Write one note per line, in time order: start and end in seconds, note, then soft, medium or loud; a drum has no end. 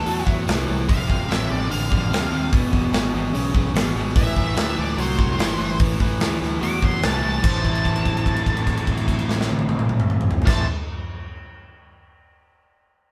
0.00 0.31 A4 loud
0.06 0.23 E2 medium
0.06 0.23 A2 medium
0.06 0.24 F#3 loud
0.06 open hi-hat medium
0.24 0.44 E2 medium
0.24 0.44 A2 medium
0.24 0.44 F#3 medium
0.24 kick medium
0.47 0.65 C2 medium
0.47 0.65 A2 medium
0.47 0.65 E3 medium
0.47 snare loud
0.47 open hi-hat medium
0.66 0.86 C2 medium
0.66 0.85 A2 medium
0.66 0.86 E3 medium
0.88 1.06 F1 medium
0.88 1.05 F2 medium
0.88 1.06 C3 loud
0.88 1.28 F5 medium
0.88 kick loud
0.88 open hi-hat medium
1.06 1.26 F1 medium
1.06 1.26 F2 medium
1.06 1.26 C3 medium
1.06 kick medium
1.28 1.46 A1 medium
1.28 1.47 F2 medium
1.28 1.47 C3 medium
1.28 1.50 E5 medium
1.28 open hi-hat medium
1.32 snare loud
1.49 1.68 A1 medium
1.49 1.68 F2 medium
1.49 1.68 C3 medium
1.49 1.70 D5 loud
1.70 1.88 A1 medium
1.70 1.88 F2 medium
1.70 1.88 D3 medium
1.70 2.50 F5 loud
1.70 open hi-hat medium
1.91 2.09 A1 medium
1.91 2.09 F2 medium
1.91 2.09 D3 medium
1.91 kick medium
2.10 2.28 D2 loud
2.10 2.29 F2 medium
2.10 2.29 C3 medium
2.10 open hi-hat medium
2.14 snare loud
2.31 2.48 D#2 medium
2.31 2.50 F2 medium
2.31 2.50 C3 medium
2.52 2.70 E1 medium
2.52 2.71 E2 medium
2.52 2.71 B2 loud
2.52 kick loud
2.52 open hi-hat medium
2.72 2.90 E1 medium
2.72 2.90 E2 medium
2.72 2.91 B2 medium
2.72 kick medium
2.92 3.10 G#1 medium
2.92 3.11 E2 medium
2.92 3.11 B2 loud
2.92 snare loud
2.92 open hi-hat medium
3.13 3.31 G#1 medium
3.13 3.32 E2 medium
3.13 3.33 B2 medium
3.33 3.51 B1 medium
3.33 3.52 E2 medium
3.33 3.53 C#3 medium
3.33 open hi-hat medium
3.54 3.72 B1 medium
3.54 3.73 E2 medium
3.54 3.73 C#3 medium
3.54 kick medium
3.74 3.92 G#1 medium
3.74 3.93 E2 medium
3.74 3.93 B2 medium
3.74 snare loud
3.74 open hi-hat medium
3.94 4.12 G#1 medium
3.94 4.14 E2 medium
3.94 4.14 B2 medium
4.16 4.33 A1 medium
4.16 4.35 A2 medium
4.16 4.35 E3 medium
4.16 4.56 E5 loud
4.16 kick loud
4.16 open hi-hat medium
4.36 4.54 A1 medium
4.36 4.53 A2 medium
4.36 4.55 E3 medium
4.36 kick medium
4.55 4.74 D2 medium
4.55 4.74 A2 medium
4.55 4.75 E3 medium
4.55 4.77 E5 medium
4.55 snare loud
4.55 open hi-hat medium
4.75 4.95 D2 loud
4.75 4.95 A2 medium
4.75 4.95 E3 medium
4.75 4.98 D5 loud
4.97 5.15 C2 medium
4.97 5.16 A2 medium
4.97 5.16 F#3 medium
4.97 5.79 C5 loud
4.97 open hi-hat medium
5.18 5.36 C2 medium
5.18 5.37 A2 medium
5.18 5.37 F#3 medium
5.18 kick medium
5.38 5.56 G1 medium
5.38 5.56 A2 medium
5.38 5.56 E3 medium
5.38 snare loud
5.38 open hi-hat medium
5.57 5.76 G1 medium
5.57 5.77 A2 medium
5.57 5.77 E3 medium
5.79 5.97 A1 medium
5.79 5.99 A2 medium
5.79 5.99 E3 loud
5.79 kick loud
5.79 open hi-hat medium
6.00 6.17 A1 medium
6.00 6.19 A2 medium
6.00 6.19 E3 medium
6.00 kick medium
6.20 6.37 D2 medium
6.20 6.39 A2 medium
6.20 6.39 E3 loud
6.20 snare loud
6.20 open hi-hat medium
6.40 6.58 D2 medium
6.40 6.59 A2 medium
6.40 6.60 E3 medium
6.40 snare soft
6.60 6.79 E2 medium
6.60 6.79 A2 medium
6.60 6.80 F#3 medium
6.60 6.83 D6 loud
6.60 open hi-hat medium
6.81 7.00 E2 medium
6.81 7.00 A2 medium
6.81 7.00 F#3 medium
6.81 7.03 C6 medium
6.81 kick medium
7.02 7.20 C2 medium
7.02 7.21 A2 medium
7.02 7.21 E3 medium
7.02 7.22 A5 medium
7.02 snare loud
7.02 open hi-hat medium
7.23 7.41 C2 medium
7.23 7.39 A2 medium
7.23 7.41 E3 medium
7.23 7.42 A5 loud
7.41 10.38 A1 medium
7.41 10.45 A2 loud
7.41 10.46 E3 loud
7.41 10.47 A3 loud
7.41 10.47 C4 loud
7.41 10.38 A5 loud
7.41 kick loud
7.41 crash medium
7.45 10.47 E4 loud
7.45 10.48 C5 loud
7.65 kick medium
7.65 crash soft
7.75 crash soft
7.85 kick medium
7.85 crash soft
7.96 crash soft
8.05 kick medium
8.05 crash soft
8.17 crash soft
8.26 kick medium
8.26 crash soft
8.36 crash soft
8.46 kick medium
8.46 crash soft
8.57 crash soft
8.67 kick medium
8.67 crash soft
8.77 crash medium
8.87 kick medium
8.87 crash soft
8.97 crash medium
9.08 kick medium
9.08 crash medium
9.19 crash soft
9.29 snare medium
9.41 snare medium
9.49 high tom medium
9.59 high tom loud
9.69 high tom medium
9.79 mid tom loud
9.89 mid tom medium
10.00 mid tom loud
10.10 mid tom loud
10.21 mid tom loud
10.31 floor tom loud
10.42 10.64 A2 medium
10.42 floor tom medium
10.46 10.64 A1 medium
10.46 10.65 E3 loud
10.46 10.65 A3 medium
10.46 10.66 C4 loud
10.46 10.66 E4 loud
10.46 10.66 C5 loud
10.46 10.65 A5 loud
10.46 kick loud
10.46 snare loud
10.46 crash loud